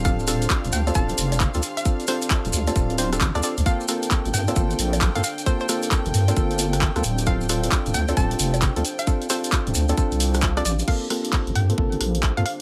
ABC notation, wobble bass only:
X:1
M:4/4
L:1/16
Q:"Swing 16ths" 1/4=133
K:Gm
V:1 name="Wobble bass" clef=bass
D,,,4 z D,,, D,, z D,,, z F,,,3 D,, z2 | z4 z D,,, D,, z D,,,4 A,,, D,, z D,, | z4 z G,,, G,, z G,,, z B,,,3 G,, z2 | z4 z G,,, G,, z G,,,4- G,,, D,, D,,,2- |
D,,,4 z D,,, D,, z D,,, z F,,,3 D,, z2 | z4 z D,,, D,, z2 C,,4- C,, A,,, z | z4 z G,,, G,, z G,,, z B,,,3 G,, z2 |]